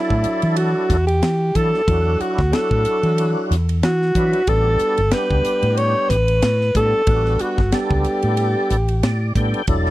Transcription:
Already playing: tonewheel organ F#3 D4 E4 A4, alto saxophone E4
0.10 fretless electric bass A2, kick
0.24 muted fretless electric bass stroke, hi-hat pedal, ride
0.42 fretless electric bass E3, ride
0.56 alto saxophone F#4, ride
0.90 fretless electric bass E2, kick, snare, hi-hat pedal, ride
1.07 alto saxophone G4, ride
1.22 fretless electric bass E3, snare, ride
1.55 fretless electric bass E3, tonewheel organ F#3 D4 E4 A4, alto saxophone A4, kick, hi-hat pedal, ride
1.74 snare
1.87 fretless electric bass E2, tonewheel organ F#3 D4 E4 F#4, kick, ride
2.20 alto saxophone F#4, muted fretless electric bass stroke, hi-hat pedal, ride
2.39 fretless electric bass D2, kick, snare
2.52 tonewheel organ F#3 D4 E4 F#4, alto saxophone A4, snare, ride
2.71 fretless electric bass A2, kick
2.85 muted fretless electric bass stroke, hi-hat pedal, ride
3.03 fretless electric bass E3, ride
3.18 ride
3.51 fretless electric bass E2, snare, hi-hat pedal, ride
3.69 ride
3.83 fretless electric bass E3, alto saxophone F#4, snare, ride
4.02 snare
4.15 fretless electric bass E3, tonewheel organ F#3 D4 E4 B4, kick, hi-hat pedal, ride
4.33 ride
4.47 fretless electric bass A1, tonewheel organ G3 B3 D4 A4, alto saxophone A4, kick, ride
4.79 hi-hat pedal, ride
4.97 fretless electric bass G1, ride
5.11 tonewheel organ G3 B3 D4 G4, alto saxophone B4, snare, ride
5.30 fretless electric bass C#2, kick
5.45 hi-hat pedal, ride
5.62 fretless electric bass A2, ride
5.77 alto saxophone C#5, ride
6.09 fretless electric bass A1, alto saxophone B4, kick, snare, hi-hat pedal, ride
6.28 ride
6.42 fretless electric bass A2, snare, ride
6.61 snare
6.75 fretless electric bass A2, tonewheel organ G3 B3 D4 A4, alto saxophone A4, kick, hi-hat pedal, ride
7.06 fretless electric bass A1, tonewheel organ G3 B3 D4 F#4, kick, ride
7.25 snare
7.39 alto saxophone F#4, hi-hat pedal, ride
7.58 fretless electric bass G1, kick, snare
7.72 tonewheel organ G3 B3 D4 A4, alto saxophone G4, snare, ride
7.91 fretless electric bass C#2, kick
8.04 muted fretless electric bass stroke, hi-hat pedal, ride
8.22 fretless electric bass A2, ride
8.37 ride
8.70 fretless electric bass A1, hi-hat pedal, ride
8.88 ride
9.03 fretless electric bass A2, tonewheel organ D5, snare, ride
9.35 fretless electric bass A2, tonewheel organ G3 B3 D4 A4 G5, kick, hi-hat pedal, ride
9.54 ride
9.67 fretless electric bass E1, tonewheel organ F#3 D4 E4 A4, kick, ride
9.86 snare

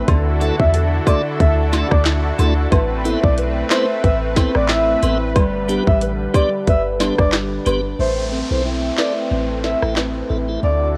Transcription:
Already playing: nylon-string guitar A3 C4 E4
0.08 808-style bass D2, analog synth pad D3 D4 E4 F#4 A4, nylon-string guitar D3 A4, kick, closed hi-hat, high woodblock
0.40 tonewheel organ A3 D4 E4 F#4 A4, nylon-string guitar E4, closed hi-hat, cabasa
0.60 808-style bass E2, soft synth lead E5, kick
0.74 nylon-string guitar A4, closed hi-hat
1.06 tonewheel organ A3 D4 E4 F#4 A4, nylon-string guitar E4, soft synth lead D5, kick, closed hi-hat, cabasa, high woodblock
1.40 808-style bass D2, nylon-string guitar A4, soft synth lead E5, kick, closed hi-hat
1.72 tonewheel organ A3 D4 E4 F#4 A4, nylon-string guitar D4, snare, closed hi-hat, cabasa, high woodblock
1.91 808-style bass D2, soft synth lead D5, kick, cross-stick
2.05 nylon-string guitar E4, snare, clap, closed hi-hat
2.38 808-style bass D2, tonewheel organ A3 D4 E4 F#4 A4, nylon-string guitar A4, closed hi-hat, cabasa, high woodblock
2.72 808-style bass A1, nylon-string guitar A3 B4, analog synth pad A3 C4 B4, kick, closed hi-hat, high woodblock
3.04 tonewheel organ B3 C4 E4 A4 B4, nylon-string guitar E4, closed hi-hat, cabasa
3.23 808-style bass B1, soft synth lead D5, kick
3.38 nylon-string guitar B4, closed hi-hat
3.70 tonewheel organ B3 C4 E4 A4 B4, nylon-string guitar E4, soft synth lead C5, snare, clap, closed hi-hat, cabasa, high woodblock
4.04 808-style bass A1, nylon-string guitar B4, soft synth lead E5, kick, closed hi-hat
4.36 tonewheel organ B3 C4 E4 A4 B4, nylon-string guitar C4, kick, snare, closed hi-hat, cabasa, high woodblock
4.55 808-style bass A1, soft synth lead D5, cross-stick
4.69 nylon-string guitar E4, soft synth lead E5, snare, clap, closed hi-hat
5.02 808-style bass A1, tonewheel organ B3 C4 E4 A4 B4, nylon-string guitar B4, closed hi-hat, cabasa, high woodblock
5.35 808-style bass G1, analog synth pad D3 G3, nylon-string guitar G3 B4, kick, closed hi-hat, high woodblock
5.68 tonewheel organ G3 B3 D4 G4 B4, nylon-string guitar G4, closed hi-hat, cabasa
5.87 808-style bass A1, soft synth lead E5, kick
6.01 nylon-string guitar B4, closed hi-hat
6.34 tonewheel organ G3 B3 D4 G4 B4, nylon-string guitar G4, soft synth lead D5, kick, closed hi-hat, cabasa, high woodblock
6.67 808-style bass G1, nylon-string guitar B4, soft synth lead E5, kick, closed hi-hat
7.00 tonewheel organ G3 B3 D4 G4 B4, nylon-string guitar D4, snare, closed hi-hat, cabasa, high woodblock
7.18 808-style bass G1, soft synth lead D5, kick, cross-stick
7.32 nylon-string guitar G4, snare, clap, closed hi-hat
7.66 808-style bass G1, tonewheel organ G3 B3 D4 G4 B4, nylon-string guitar B4, closed hi-hat, cabasa, high woodblock
7.99 808-style bass A1, analog synth pad A3 C4, nylon-string guitar A3, soft synth lead C5, downlifter
8.32 nylon-string guitar C4, tonewheel organ A4 B4
8.50 808-style bass B1, tonewheel organ C4 E4 A4 B4, soft synth lead C5
8.65 nylon-string guitar E4
8.97 tonewheel organ C4 E4 A4 B4, nylon-string guitar B4, soft synth lead D5, snare, clap
9.31 808-style bass A1, nylon-string guitar C4
9.64 nylon-string guitar E4, tonewheel organ A4 B4, soft synth lead E5, snare
9.82 808-style bass A1, tonewheel organ C4 E4 A4 B4, cross-stick
9.96 nylon-string guitar B4, snare, clap
10.30 808-style bass A1, nylon-string guitar E4, tonewheel organ A4 B4
10.48 tonewheel organ C4 E4 A4 B4
10.63 808-style bass D2, nylon-string guitar D3, analog synth pad D3 D4 E4 F#4 A4, soft synth lead D5

